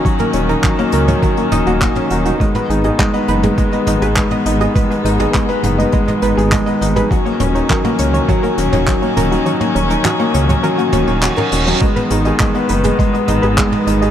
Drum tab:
HH |xxxxxxxxxxxxxxxx|xxxxxxxxxxxxxxxx|xxxxxxxxxxxxxxxx|xxxxxxxxxxxxxxxx|
CP |----x-------x---|----x-------x---|----x-------x---|----x-------x---|
T2 |-o--o--o--o--o--|-o--o--o--o--o--|o--o--o--o--o--o|--o--o--o--o--o-|
BD |o---o---o---o---|o---o---o---o---|o---o---o---o---|o---o---o---o---|

HH |xxxxxxxxxxxxxxxx|xxxxxxxxxxxxxxxx|
CP |----x-------x---|----x-------x---|
T2 |-o--o--o--o--o--|-o--o--o--o--o--|
BD |----------------|o---o---o---o---|